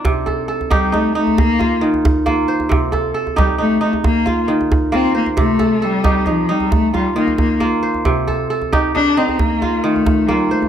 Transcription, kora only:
X:1
M:12/8
L:1/8
Q:3/8=90
K:Cdor
V:1 name="Kora"
[DE] A A G E3 F3 F c- | c A A G E3 F3 F c- | c A A G E3 F3 F c- | c A A G E3 F3 F c |]
V:2 name="Kora"
C,2 z E2 E z2 E,2 B,2 | C,2 z E2 E z2 E,2 B,2 | C,2 z E2 E z2 E,2 B,2 | C,2 z E2 E z2 E,2 B,2 |]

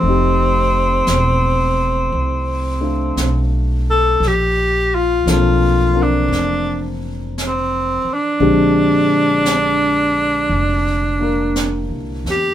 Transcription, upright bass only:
X:1
M:4/4
L:1/8
Q:"Swing" 1/4=57
K:Bb
V:1 name="Upright bass" clef=bass
F,,,2 =E,,,2 C,,2 =B,,,2 | B,,,2 =B,,,2 F,,,3 z | B,,,4 F,,,2- (3F,,, C,, =E,, |]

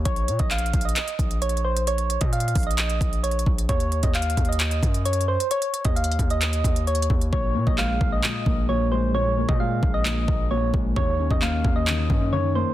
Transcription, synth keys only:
X:1
M:4/4
L:1/16
Q:1/4=132
K:Bbm
V:1 name="Synth keys"
d3 e f3 e4- e d2 c2 | d3 e f3 e4- e d2 z2 | d3 e f3 e4- e d2 c2 | d3 e f3 e4- e d2 z2 |
d3 e f3 e4- e d2 c2 | d3 e f3 e4- e d2 z2 | d3 e f3 e4- e d2 c2 |]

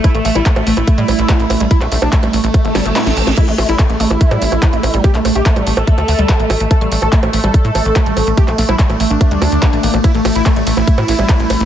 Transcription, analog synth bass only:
X:1
M:4/4
L:1/16
Q:1/4=144
K:none
V:1 name="Analog synth bass" clef=bass
z A,,, A,,, A,,, z A,,, A,,, A,,, z A,, A,,, A,,, z A,,, A,,, A,,, | z _B,,, B,,, B,,, z A,,, A,,, A,,, z G,,, G,,, G,,, z A,,, A,,, A,,, | z A,,, A,,, A,,, z A,,, A,,, A,,, z A,, A,,, A,,, z A,,, A,,, A,,, | z _B,,, B,,, B,,, z A,,, A,,, A,,, z D,, D,, D,, z A,,, A,,, A,,, |
z A,,, A,,, A,,, z A,,, A,,, A,,, z A,, A,,, A,,, z A,,, A,,, A,,, | z _B,,, B,,, B,,, z A,,, A,,, A,,, z D,, D,, D,, z A,,, A,,, A,,, | z A,,, A,,, A,,, z A,,, A,,, A,,, z A,, A,,, A,,, z A,,, A,,, A,,, |]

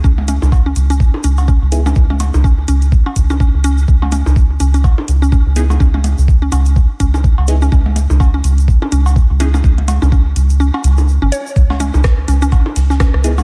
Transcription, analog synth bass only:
X:1
M:4/4
L:1/16
Q:"Swing 16ths" 1/4=125
K:C#m
V:1 name="Analog synth bass" clef=bass
C,,3 C,,3 C,,3 z C,,3 C,,3 | C,,3 C,,3 C,,3 z C,,3 C,,3 | C,,3 C,,3 C,,3 z C,,3 C,,3 | C,,3 C,,3 C,,3 z C,,3 C,,3 |
C,,3 C,,3 C,,3 z C,,3 C,,3 | C,,3 C,,3 C,,3 z C,,3 G,,, z2 | C,,3 C,,3 C,,3 z C,,3 C,,3 |]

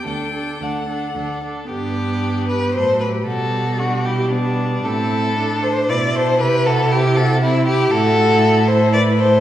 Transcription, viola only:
X:1
M:3/4
L:1/8
Q:1/4=116
K:G
V:1 name="Viola"
D D D D D D | B,4 F,2 | G,4 G,2 | C2 D2 E2 |
E4 E2 | [K:Ador] E6 |]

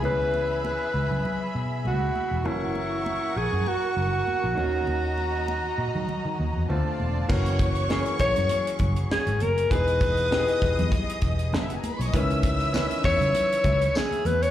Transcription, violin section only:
X:1
M:4/4
L:1/16
Q:"Swing 16ths" 1/4=99
K:F#mix
V:1 name="Violin section"
[Geb]16 | [Afc']12- [Afc']2 [Fda]2- | [Fda]12 [=F=d=a]4 | [cc']12- [cc']2 z2 |
[dd']12 z/2 [Ee]/2 [Ff]/2 [Gg]/2 [Aa]/2 [Bb]/2 [cc']/2 [dd']/2 | [ee']12- [ee']2 z2 |]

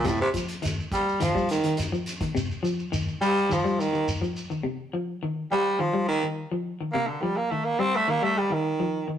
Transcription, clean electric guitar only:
X:1
M:4/4
L:1/16
Q:1/4=105
K:Cdor
V:1 name="Clean electric guitar" clef=bass
C,2 F,2 E,2 z2 E, G,2 E,2 F,2 E, | C,2 F,2 E,2 G,2 E, G,2 E,2 F,2 E, | C,2 F,2 E,2 G,2 E, G,2 E,2 F,2 E, | C,2 F,2 E,2 G,2 E, G,2 E,2 F,2 E, |]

